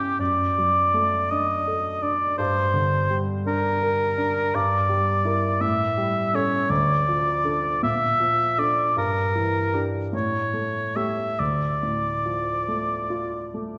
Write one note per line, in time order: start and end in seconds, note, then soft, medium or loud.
0.00 0.15 G2 soft
0.00 0.23 G3 soft
0.00 0.22 A3 soft
0.00 0.22 C#4 soft
0.00 0.22 E4 soft
0.00 0.19 G4 soft
0.19 2.35 F#2 soft
0.19 1.32 D5 medium
0.58 1.17 F#3 soft
0.94 1.52 A3 soft
1.31 1.89 D4 soft
1.31 2.04 D#5 medium
1.68 2.25 A4 soft
2.02 2.39 D4 soft
2.02 2.37 D5 medium
2.38 4.50 G2 soft
2.38 3.18 C5 medium
2.74 3.32 D3 soft
3.10 3.68 G3 soft
3.46 4.04 D4 soft
3.46 4.57 A#4 medium
3.83 4.40 A#4 soft
4.18 4.54 D4 soft
4.54 5.59 G2 soft
4.54 5.63 D5 medium
4.89 5.47 G3 soft
5.25 5.58 E4 soft
5.25 5.59 A#4 soft
5.61 6.66 A2 soft
5.61 6.37 E5 medium
5.98 6.55 G3 soft
6.34 6.66 C#4 soft
6.34 6.67 A4 soft
6.34 6.71 C#5 medium
6.70 7.80 D2 soft
6.70 7.82 D5 medium
7.08 7.69 F3 soft
7.44 7.79 D4 soft
7.44 7.79 A4 soft
7.83 8.93 A#2 soft
7.83 8.61 E5 medium
8.20 8.81 F3 soft
8.58 8.93 D4 soft
8.58 8.93 A4 soft
8.58 8.97 D5 medium
8.97 10.09 G2 soft
8.97 9.83 A#4 soft
9.36 9.97 E3 soft
9.74 10.09 D4 soft
9.74 10.09 G4 soft
10.13 11.36 A2 soft
10.13 10.98 C#5 soft
10.53 10.94 A3 soft
10.96 11.36 A3 soft
10.96 11.36 G4 soft
10.96 11.41 E5 soft
11.40 13.78 D2 soft
11.40 13.55 D5 soft
11.83 12.52 A2 soft
12.26 12.94 F3 soft
12.68 13.37 A3 soft
13.10 13.78 F4 soft
13.54 13.78 A3 soft